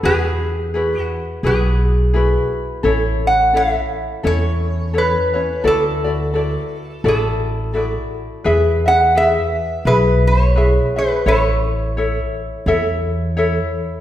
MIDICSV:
0, 0, Header, 1, 4, 480
1, 0, Start_track
1, 0, Key_signature, 3, "major"
1, 0, Tempo, 701754
1, 27, Time_signature, 4, 2, 24, 8
1, 9580, End_track
2, 0, Start_track
2, 0, Title_t, "Resonator guitar played with a steel bar"
2, 0, Program_c, 0, 25
2, 37, Note_on_c, 0, 68, 91
2, 700, Note_off_c, 0, 68, 0
2, 700, Note_on_c, 0, 66, 91
2, 994, Note_off_c, 0, 66, 0
2, 1003, Note_on_c, 0, 68, 72
2, 1722, Note_off_c, 0, 68, 0
2, 2238, Note_on_c, 0, 78, 77
2, 2438, Note_off_c, 0, 78, 0
2, 2441, Note_on_c, 0, 76, 82
2, 2919, Note_on_c, 0, 73, 89
2, 2925, Note_off_c, 0, 76, 0
2, 3404, Note_off_c, 0, 73, 0
2, 3407, Note_on_c, 0, 71, 76
2, 3882, Note_on_c, 0, 69, 88
2, 3888, Note_off_c, 0, 71, 0
2, 4837, Note_off_c, 0, 69, 0
2, 4845, Note_on_c, 0, 69, 70
2, 5324, Note_off_c, 0, 69, 0
2, 5324, Note_on_c, 0, 68, 70
2, 5562, Note_off_c, 0, 68, 0
2, 6072, Note_on_c, 0, 78, 91
2, 6273, Note_off_c, 0, 78, 0
2, 6276, Note_on_c, 0, 76, 88
2, 6752, Note_on_c, 0, 71, 82
2, 6763, Note_off_c, 0, 76, 0
2, 7004, Note_off_c, 0, 71, 0
2, 7027, Note_on_c, 0, 73, 82
2, 7514, Note_on_c, 0, 71, 74
2, 7518, Note_off_c, 0, 73, 0
2, 7716, Note_off_c, 0, 71, 0
2, 7717, Note_on_c, 0, 73, 84
2, 9126, Note_off_c, 0, 73, 0
2, 9580, End_track
3, 0, Start_track
3, 0, Title_t, "Ukulele"
3, 0, Program_c, 1, 24
3, 24, Note_on_c, 1, 68, 77
3, 27, Note_on_c, 1, 64, 72
3, 31, Note_on_c, 1, 66, 70
3, 34, Note_on_c, 1, 71, 77
3, 497, Note_off_c, 1, 68, 0
3, 505, Note_on_c, 1, 68, 53
3, 508, Note_off_c, 1, 66, 0
3, 509, Note_off_c, 1, 64, 0
3, 510, Note_off_c, 1, 71, 0
3, 512, Note_on_c, 1, 64, 52
3, 516, Note_on_c, 1, 66, 60
3, 520, Note_on_c, 1, 71, 59
3, 976, Note_off_c, 1, 68, 0
3, 983, Note_off_c, 1, 66, 0
3, 984, Note_off_c, 1, 64, 0
3, 984, Note_on_c, 1, 68, 75
3, 985, Note_off_c, 1, 71, 0
3, 987, Note_on_c, 1, 64, 68
3, 991, Note_on_c, 1, 66, 77
3, 994, Note_on_c, 1, 71, 78
3, 1452, Note_off_c, 1, 68, 0
3, 1460, Note_on_c, 1, 68, 48
3, 1462, Note_off_c, 1, 64, 0
3, 1463, Note_off_c, 1, 66, 0
3, 1465, Note_on_c, 1, 64, 62
3, 1469, Note_off_c, 1, 71, 0
3, 1471, Note_on_c, 1, 66, 60
3, 1477, Note_on_c, 1, 71, 59
3, 1934, Note_off_c, 1, 71, 0
3, 1937, Note_on_c, 1, 69, 75
3, 1939, Note_off_c, 1, 66, 0
3, 1941, Note_on_c, 1, 61, 82
3, 1942, Note_off_c, 1, 68, 0
3, 1944, Note_off_c, 1, 64, 0
3, 1947, Note_on_c, 1, 64, 83
3, 1948, Note_on_c, 1, 73, 81
3, 2415, Note_off_c, 1, 69, 0
3, 2417, Note_off_c, 1, 61, 0
3, 2418, Note_on_c, 1, 69, 53
3, 2425, Note_off_c, 1, 73, 0
3, 2425, Note_on_c, 1, 61, 51
3, 2426, Note_off_c, 1, 64, 0
3, 2429, Note_on_c, 1, 64, 59
3, 2434, Note_on_c, 1, 73, 62
3, 2893, Note_off_c, 1, 69, 0
3, 2894, Note_off_c, 1, 61, 0
3, 2896, Note_on_c, 1, 69, 66
3, 2898, Note_off_c, 1, 73, 0
3, 2900, Note_off_c, 1, 64, 0
3, 2902, Note_on_c, 1, 61, 75
3, 2903, Note_on_c, 1, 64, 78
3, 2906, Note_on_c, 1, 73, 75
3, 3371, Note_off_c, 1, 61, 0
3, 3372, Note_off_c, 1, 69, 0
3, 3375, Note_on_c, 1, 69, 59
3, 3379, Note_off_c, 1, 73, 0
3, 3379, Note_on_c, 1, 61, 58
3, 3381, Note_off_c, 1, 64, 0
3, 3383, Note_on_c, 1, 64, 55
3, 3387, Note_on_c, 1, 73, 59
3, 3642, Note_off_c, 1, 73, 0
3, 3648, Note_off_c, 1, 69, 0
3, 3650, Note_on_c, 1, 73, 47
3, 3651, Note_off_c, 1, 64, 0
3, 3657, Note_off_c, 1, 61, 0
3, 3659, Note_on_c, 1, 64, 38
3, 3664, Note_on_c, 1, 61, 33
3, 3852, Note_off_c, 1, 64, 0
3, 3853, Note_off_c, 1, 73, 0
3, 3856, Note_on_c, 1, 69, 69
3, 3859, Note_off_c, 1, 61, 0
3, 3860, Note_on_c, 1, 64, 67
3, 3862, Note_on_c, 1, 66, 76
3, 3866, Note_on_c, 1, 74, 79
3, 4125, Note_off_c, 1, 74, 0
3, 4130, Note_off_c, 1, 69, 0
3, 4133, Note_off_c, 1, 66, 0
3, 4133, Note_on_c, 1, 74, 45
3, 4137, Note_off_c, 1, 64, 0
3, 4141, Note_on_c, 1, 66, 41
3, 4147, Note_on_c, 1, 64, 38
3, 4332, Note_off_c, 1, 74, 0
3, 4333, Note_off_c, 1, 64, 0
3, 4335, Note_on_c, 1, 69, 51
3, 4337, Note_off_c, 1, 66, 0
3, 4342, Note_on_c, 1, 64, 52
3, 4345, Note_on_c, 1, 66, 59
3, 4349, Note_on_c, 1, 74, 60
3, 4809, Note_off_c, 1, 69, 0
3, 4812, Note_off_c, 1, 66, 0
3, 4817, Note_on_c, 1, 69, 72
3, 4818, Note_off_c, 1, 64, 0
3, 4818, Note_off_c, 1, 74, 0
3, 4820, Note_on_c, 1, 66, 72
3, 4821, Note_on_c, 1, 64, 66
3, 4826, Note_on_c, 1, 74, 73
3, 5283, Note_off_c, 1, 69, 0
3, 5291, Note_on_c, 1, 69, 50
3, 5294, Note_off_c, 1, 66, 0
3, 5295, Note_off_c, 1, 64, 0
3, 5298, Note_on_c, 1, 64, 63
3, 5301, Note_off_c, 1, 74, 0
3, 5302, Note_on_c, 1, 66, 61
3, 5309, Note_on_c, 1, 74, 65
3, 5773, Note_off_c, 1, 74, 0
3, 5775, Note_on_c, 1, 71, 73
3, 5776, Note_off_c, 1, 69, 0
3, 5777, Note_off_c, 1, 64, 0
3, 5780, Note_off_c, 1, 66, 0
3, 5780, Note_on_c, 1, 64, 83
3, 5783, Note_on_c, 1, 68, 86
3, 5786, Note_on_c, 1, 76, 89
3, 6050, Note_off_c, 1, 76, 0
3, 6055, Note_off_c, 1, 71, 0
3, 6057, Note_off_c, 1, 64, 0
3, 6058, Note_off_c, 1, 68, 0
3, 6058, Note_on_c, 1, 76, 50
3, 6065, Note_on_c, 1, 68, 43
3, 6073, Note_on_c, 1, 64, 39
3, 6255, Note_off_c, 1, 64, 0
3, 6259, Note_off_c, 1, 68, 0
3, 6259, Note_on_c, 1, 71, 60
3, 6261, Note_off_c, 1, 76, 0
3, 6263, Note_on_c, 1, 64, 52
3, 6268, Note_on_c, 1, 68, 63
3, 6273, Note_on_c, 1, 76, 66
3, 6738, Note_off_c, 1, 71, 0
3, 6743, Note_off_c, 1, 68, 0
3, 6745, Note_off_c, 1, 64, 0
3, 6746, Note_on_c, 1, 71, 75
3, 6748, Note_on_c, 1, 64, 76
3, 6751, Note_off_c, 1, 76, 0
3, 6751, Note_on_c, 1, 68, 73
3, 6754, Note_on_c, 1, 76, 77
3, 7213, Note_off_c, 1, 71, 0
3, 7221, Note_off_c, 1, 64, 0
3, 7221, Note_on_c, 1, 71, 58
3, 7223, Note_off_c, 1, 68, 0
3, 7224, Note_on_c, 1, 64, 63
3, 7231, Note_off_c, 1, 76, 0
3, 7232, Note_on_c, 1, 68, 58
3, 7234, Note_on_c, 1, 76, 61
3, 7489, Note_off_c, 1, 76, 0
3, 7497, Note_on_c, 1, 76, 45
3, 7498, Note_off_c, 1, 68, 0
3, 7498, Note_off_c, 1, 71, 0
3, 7500, Note_off_c, 1, 64, 0
3, 7507, Note_on_c, 1, 68, 43
3, 7509, Note_on_c, 1, 64, 33
3, 7699, Note_off_c, 1, 64, 0
3, 7702, Note_off_c, 1, 76, 0
3, 7703, Note_on_c, 1, 73, 73
3, 7706, Note_off_c, 1, 68, 0
3, 7707, Note_on_c, 1, 64, 78
3, 7710, Note_on_c, 1, 69, 75
3, 7711, Note_on_c, 1, 76, 80
3, 8185, Note_off_c, 1, 73, 0
3, 8187, Note_on_c, 1, 73, 56
3, 8190, Note_off_c, 1, 64, 0
3, 8191, Note_off_c, 1, 69, 0
3, 8193, Note_on_c, 1, 64, 55
3, 8194, Note_on_c, 1, 69, 59
3, 8199, Note_off_c, 1, 76, 0
3, 8202, Note_on_c, 1, 76, 58
3, 8663, Note_off_c, 1, 73, 0
3, 8666, Note_on_c, 1, 73, 65
3, 8668, Note_off_c, 1, 64, 0
3, 8669, Note_off_c, 1, 69, 0
3, 8671, Note_on_c, 1, 64, 83
3, 8671, Note_on_c, 1, 69, 83
3, 8672, Note_off_c, 1, 76, 0
3, 8675, Note_on_c, 1, 76, 92
3, 9140, Note_off_c, 1, 73, 0
3, 9143, Note_on_c, 1, 73, 64
3, 9144, Note_off_c, 1, 64, 0
3, 9147, Note_on_c, 1, 64, 70
3, 9150, Note_off_c, 1, 69, 0
3, 9152, Note_off_c, 1, 76, 0
3, 9153, Note_on_c, 1, 69, 65
3, 9155, Note_on_c, 1, 76, 67
3, 9580, Note_off_c, 1, 64, 0
3, 9580, Note_off_c, 1, 69, 0
3, 9580, Note_off_c, 1, 73, 0
3, 9580, Note_off_c, 1, 76, 0
3, 9580, End_track
4, 0, Start_track
4, 0, Title_t, "Upright bass"
4, 0, Program_c, 2, 32
4, 23, Note_on_c, 2, 40, 88
4, 647, Note_off_c, 2, 40, 0
4, 980, Note_on_c, 2, 35, 86
4, 1605, Note_off_c, 2, 35, 0
4, 1941, Note_on_c, 2, 33, 80
4, 2565, Note_off_c, 2, 33, 0
4, 2899, Note_on_c, 2, 40, 90
4, 3524, Note_off_c, 2, 40, 0
4, 3858, Note_on_c, 2, 38, 76
4, 4482, Note_off_c, 2, 38, 0
4, 4816, Note_on_c, 2, 33, 94
4, 5441, Note_off_c, 2, 33, 0
4, 5781, Note_on_c, 2, 40, 86
4, 6405, Note_off_c, 2, 40, 0
4, 6739, Note_on_c, 2, 35, 97
4, 7364, Note_off_c, 2, 35, 0
4, 7702, Note_on_c, 2, 33, 88
4, 8327, Note_off_c, 2, 33, 0
4, 8660, Note_on_c, 2, 40, 96
4, 9287, Note_off_c, 2, 40, 0
4, 9580, End_track
0, 0, End_of_file